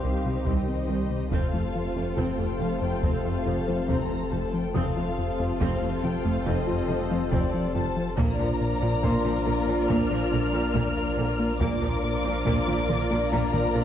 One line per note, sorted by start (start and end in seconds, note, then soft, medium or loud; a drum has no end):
0.00 1.34 C2 medium
0.00 0.11 C2 soft
0.00 1.28 C3 soft
0.00 1.28 D#3 soft
0.00 1.28 D#3 medium
0.00 0.16 D#3 medium
0.00 0.12 D#3 soft
0.00 1.16 G3 soft
0.00 1.16 C4 soft
0.00 1.28 C4 medium
0.00 1.28 D#4 medium
0.00 1.28 G4 soft
0.00 1.28 G4 medium
0.00 1.28 C5 soft
0.00 1.28 C5 medium
0.00 0.47 F5 medium
0.00 0.85 D6 soft
0.04 0.17 C2 medium
0.25 0.33 C2 soft
0.25 0.38 C3 medium
0.25 0.38 G3 medium
0.25 0.33 G3 soft
0.45 0.53 C2 medium
0.45 0.54 C2 medium
0.45 0.59 C2 medium
0.45 0.59 C3 medium
0.45 0.67 C4 medium
0.45 1.32 D#5 medium
0.45 taiko medium
0.68 0.81 C3 medium
0.89 0.97 C2 soft
0.89 1.02 C2 medium
0.89 0.97 C2 soft
0.89 0.97 D#3 medium
0.89 1.02 C4 medium
1.10 1.23 C3 medium
1.31 1.40 F1 medium
1.31 4.74 F1 medium
1.31 1.40 F2 medium
1.31 1.45 F2 medium
1.31 4.58 C3 medium
1.31 1.44 F3 medium
1.31 4.58 F3 medium
1.31 4.73 F3 medium
1.31 4.75 A3 medium
1.31 4.74 A3 medium
1.31 1.52 C4 medium
1.31 4.72 C4 medium
1.31 4.71 F4 medium
1.31 4.71 A4 medium
1.31 4.71 C5 medium
1.31 4.72 C5 medium
1.31 2.18 F5 medium
1.31 taiko medium
1.53 1.61 F2 soft
1.53 1.67 F2 medium
1.53 1.61 A3 soft
1.53 1.66 A3 medium
1.75 1.88 F2 medium
1.96 2.09 F2 medium
1.96 2.04 F2 soft
1.96 2.04 A3 soft
1.96 2.09 A3 soft
2.17 2.26 F1 medium
2.17 2.25 F2 medium
2.17 2.31 F2 medium
2.17 2.30 F3 medium
2.17 2.38 C4 medium
2.17 2.61 G5 medium
2.17 taiko medium
2.39 2.47 F2 soft
2.39 2.52 F2 medium
2.39 2.52 A3 medium
2.39 2.48 A3 soft
2.60 2.69 F1 soft
2.60 2.68 F2 soft
2.60 2.69 F3 soft
2.60 2.74 F3 soft
2.60 2.73 C4 medium
2.60 2.82 F5 medium
2.81 2.89 F2 soft
2.81 2.95 F2 medium
2.81 2.95 A3 medium
2.81 2.91 A3 soft
2.81 3.03 G5 medium
3.03 3.11 F1 medium
3.03 3.11 F2 medium
3.03 3.16 F2 medium
3.03 3.16 F3 medium
3.03 3.24 C4 medium
3.03 3.88 F5 medium
3.03 taiko medium
3.24 3.32 F2 soft
3.24 3.38 F2 medium
3.24 3.33 A3 medium
3.24 3.38 F4 medium
3.46 3.54 F1 soft
3.46 3.54 F2 soft
3.46 3.59 F2 medium
3.46 3.55 F3 medium
3.46 3.59 A3 medium
3.67 3.75 F2 soft
3.67 3.81 F3 medium
3.67 3.76 A3 medium
3.67 3.81 C4 medium
3.88 3.97 F1 medium
3.88 3.96 F2 medium
3.88 4.02 F2 medium
3.88 4.02 F3 medium
3.88 4.09 C4 medium
3.88 4.33 A#5 medium
3.88 taiko medium
4.11 4.24 F3 medium
4.32 4.40 F1 soft
4.32 4.40 F2 medium
4.32 4.46 F2 medium
4.32 4.41 F3 medium
4.32 4.45 F4 medium
4.32 4.54 A5 medium
4.54 4.67 F3 medium
4.54 4.75 G5 medium
4.74 8.19 F1 medium
4.74 4.83 F1 medium
4.74 4.83 F2 medium
4.74 4.88 F2 medium
4.74 8.14 C3 medium
4.74 8.14 F3 medium
4.74 4.88 F3 medium
4.74 8.14 F3 medium
4.74 8.00 A3 medium
4.74 4.95 C4 medium
4.74 8.00 C4 medium
4.74 8.14 C4 medium
4.74 8.14 F4 medium
4.74 8.14 A4 medium
4.74 8.14 C5 medium
4.74 5.59 F5 medium
4.74 7.28 D#6 soft
4.74 taiko loud
4.97 5.05 F2 medium
4.97 5.10 F2 medium
4.97 5.10 A3 medium
4.97 5.05 A3 medium
5.19 5.31 F2 medium
5.39 5.47 F2 medium
5.39 5.52 F2 medium
5.39 5.53 A3 medium
5.39 5.48 A3 medium
5.61 5.69 F1 medium
5.61 5.69 F2 medium
5.61 5.74 F2 medium
5.61 5.74 F3 medium
5.61 5.81 C4 medium
5.61 6.03 F5 medium
5.61 taiko medium
5.82 5.90 F2 medium
5.82 5.96 F2 medium
5.82 5.95 A3 medium
5.82 5.90 A3 medium
6.03 6.12 F1 soft
6.03 6.11 F2 medium
6.03 6.11 F3 medium
6.03 6.17 F3 medium
6.03 6.16 C4 medium
6.03 6.25 G5 medium
6.25 6.33 F2 medium
6.25 6.38 F2 medium
6.25 6.38 A3 medium
6.25 6.33 A3 medium
6.25 6.46 F5 medium
6.46 6.55 F1 medium
6.46 6.54 F2 medium
6.46 6.59 F2 medium
6.46 6.59 F3 medium
6.46 6.66 C4 medium
6.46 7.32 D#5 loud
6.46 taiko medium
6.67 6.76 F2 medium
6.67 6.81 F2 medium
6.67 6.75 A3 medium
6.67 6.80 F4 medium
6.89 6.98 F1 medium
6.89 6.97 F2 medium
6.89 7.03 F2 medium
6.89 6.97 F3 medium
6.89 7.02 A3 medium
7.10 7.19 F2 medium
7.10 7.24 F3 medium
7.10 7.18 A3 medium
7.10 7.23 C4 medium
7.31 7.41 F1 medium
7.31 7.45 F2 medium
7.31 7.41 F2 medium
7.31 7.45 F3 medium
7.31 7.52 C4 medium
7.31 7.75 D5 medium
7.31 taiko medium
7.54 7.67 F3 medium
7.75 7.84 F1 medium
7.75 7.83 F2 medium
7.75 7.88 F2 medium
7.75 7.83 F3 medium
7.75 7.88 F4 medium
7.75 8.17 A5 loud
7.97 8.10 F3 medium
8.17 11.60 A#1 medium
8.17 8.26 A#1 medium
8.17 8.31 A#2 medium
8.17 8.26 A#2 medium
8.17 11.60 A#2 medium
8.17 11.57 F3 medium
8.17 8.30 A#3 medium
8.17 8.38 A#3 medium
8.17 11.57 A#3 medium
8.17 11.60 A#3 medium
8.17 11.57 D4 medium
8.17 11.57 F4 medium
8.17 11.57 A#4 medium
8.17 11.59 A#4 medium
8.17 11.57 D5 medium
8.17 11.59 D5 medium
8.17 9.86 A#5 loud
8.17 taiko loud
8.39 8.47 A#2 medium
8.39 8.53 A#2 medium
8.39 8.47 F3 medium
8.39 8.52 D4 medium
8.61 8.74 A#2 medium
8.82 8.90 A#2 medium
8.82 8.95 A#2 medium
8.82 8.90 F3 medium
8.82 8.95 D4 medium
9.03 9.12 A#1 medium
9.03 9.17 A#2 medium
9.03 9.12 A#2 medium
9.03 9.16 A#3 medium
9.03 9.24 A#3 medium
9.03 11.57 C6 medium
9.03 taiko medium
9.25 9.33 A#2 medium
9.25 9.38 A#2 medium
9.25 9.33 F3 medium
9.25 9.38 D4 medium
9.46 9.55 A#1 medium
9.46 9.55 A#2 medium
9.46 9.55 D3 medium
9.46 9.60 A#3 medium
9.46 9.59 F4 medium
9.68 9.76 A#2 medium
9.68 9.81 A#2 medium
9.68 9.76 F3 medium
9.68 9.81 D4 medium
9.89 9.97 A#1 medium
9.89 10.03 A#2 medium
9.89 9.98 A#2 medium
9.89 10.09 A#3 medium
9.89 10.02 A#3 medium
9.89 11.57 F6 loud
9.89 taiko medium
10.10 10.19 A#2 medium
10.10 10.24 A#2 medium
10.10 10.19 F3 medium
10.10 10.23 A#4 medium
10.32 10.40 A#1 medium
10.32 10.41 A#2 medium
10.32 10.45 A#2 medium
10.32 10.41 D3 medium
10.32 10.45 D4 medium
10.53 10.61 A#2 medium
10.53 10.62 F3 medium
10.53 10.67 A#3 medium
10.53 10.66 F4 medium
10.75 10.83 A#1 medium
10.75 10.83 A#2 medium
10.75 10.88 A#2 medium
10.75 10.88 A#3 medium
10.75 10.95 A#3 medium
10.75 taiko medium
10.97 11.10 A#3 medium
11.17 11.26 A#1 medium
11.17 11.26 A#2 medium
11.17 11.31 A#2 medium
11.17 11.26 D3 medium
11.17 11.30 A#4 medium
11.40 11.52 A#3 medium
11.60 13.84 A#1 medium
11.60 11.69 A#1 medium
11.60 13.84 A#2 medium
11.60 11.74 A#2 medium
11.60 11.69 A#2 medium
11.60 13.84 F3 medium
11.60 11.73 A#3 medium
11.60 13.84 A#3 medium
11.60 11.81 A#3 medium
11.60 13.84 D4 medium
11.60 13.84 F4 medium
11.60 13.84 A#4 medium
11.60 13.84 D5 medium
11.60 13.32 D6 loud
11.60 taiko loud
11.81 11.90 A#2 medium
11.81 11.95 A#2 medium
11.81 11.91 F3 medium
11.81 11.95 D4 medium
12.04 12.17 A#2 medium
12.24 12.38 A#2 medium
12.24 12.34 A#2 medium
12.24 12.33 F3 medium
12.24 12.38 D4 medium
12.46 12.54 A#1 medium
12.46 12.59 A#2 loud
12.46 12.55 A#2 medium
12.46 12.59 A#3 medium
12.46 12.67 A#3 medium
12.46 taiko medium
12.67 12.81 A#2 medium
12.67 12.77 A#2 medium
12.67 12.77 F3 medium
12.67 12.80 D4 medium
12.67 taiko mid soft
12.89 12.98 A#1 soft
12.89 12.97 A#2 medium
12.89 12.98 D3 medium
12.89 13.02 A#3 medium
12.89 13.02 F4 medium
12.89 taiko mid medium
13.10 13.24 A#2 medium
13.10 13.20 A#2 medium
13.10 13.20 F3 medium
13.10 13.23 D4 medium
13.32 13.40 A#1 medium
13.32 13.45 A#2 medium
13.32 13.41 A#2 medium
13.32 13.45 A#3 medium
13.32 13.52 A#3 medium
13.32 13.84 A#5 loud
13.32 taiko medium
13.53 13.67 A#2 medium
13.53 13.62 A#2 medium
13.53 13.62 F3 medium
13.53 13.66 A#4 medium
13.53 taiko mid soft
13.75 13.83 A#1 medium
13.75 13.84 A#2 medium
13.75 13.83 A#2 medium
13.75 13.84 D3 medium
13.75 13.84 D4 medium